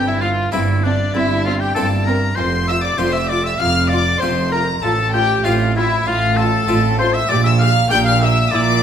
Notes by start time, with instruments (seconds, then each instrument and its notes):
Already playing: double bass section G1, harpsichord G2, cello section G2
0.06 oboe E4, violin section E4 E5
0.21 viola section C4, oboe F4, violin section F4 F5
0.52 double bass section G1, harpsichord G2 A#3 C4 E4, cello section G2, viola section C4, oboe E4, violin section E4 E5
0.82 viola section C4, violin section D4 D5, oboe D4
1.13 double bass section G1, cello section G2, harpsichord G2, viola section C4, oboe E4, violin section E4 E5
1.44 viola section C4, oboe F4, violin section F5
1.48 violin section F4
1.60 oboe G4, violin section G4 G5
1.75 double bass section G1, harpsichord G2 A#3 C4 E4, cello section G2, viola section C4, oboe A4, violin section A4 A5
2.06 viola section C4, oboe A#4, violin section A#4 A#5
2.35 double bass section F1, harpsichord F2, cello section F2, viola section F4, oboe C5, violin section C5 C6
2.67 viola section F4, oboe E5, violin section E5 E6
2.81 oboe D5, violin section D5 D6
2.98 double bass section F1, harpsichord F2 A3 C4 F4, cello section F2, viola section F4, oboe C5, violin section C5 C6
3.13 oboe E5, violin section E5 E6
3.29 viola section F4, oboe D5, violin section D5 D6
3.44 oboe E5, violin section E5 E6
3.59 double bass section F1, cello section F2, harpsichord F2, viola section F4, oboe F5, violin section F5 F6
3.89 viola section F4, oboe D5, violin section D5 D6
4.21 double bass section F1, cello section F2, harpsichord F2 A3 C4 F4, viola section F4, oboe C5, violin section C5 C6
4.51 viola section F4, violin section A#4 A#5, oboe A#4
4.82 double bass section A1, harpsichord A2, cello section A2, viola section F4, violin section A4 A5, oboe A4
5.13 viola section F4, violin section G4 G5, oboe G4
5.43 double bass section A1, cello section A2, harpsichord A2 A3 C4 F4, violin section F4 F5, oboe F4, viola section F4
5.75 violin section E4 E5, oboe E4, viola section F4
6.05 double bass section A1, harpsichord A2, cello section A2, viola section F4, violin section F4 F5, oboe F4
6.37 viola section F4, violin section A4 A5, oboe A4
6.66 double bass section A1, cello section A2, harpsichord A2 A3 C4 F4, viola section F4
6.97 viola section F4, violin section C5 C6, oboe C5
7.13 violin section E5 E6, oboe E5
7.27 double bass section A#1, harpsichord A#2, cello section A#2, viola section G4, oboe D5, violin section D5 D6
7.44 oboe E5, violin section E5 E6
7.59 viola section G4, oboe F5, violin section F5 F6
7.89 double bass section A#1, harpsichord A#2 D4 G4, cello section A#2, viola section G4, violin section G5 G6, oboe G5
8.05 violin section F5 F6, oboe F5
8.21 viola section G4, oboe E5, violin section E5 E6
8.51 double bass section A#1, harpsichord A#2, cello section A#2, viola section E4, oboe D5, violin section D5 D6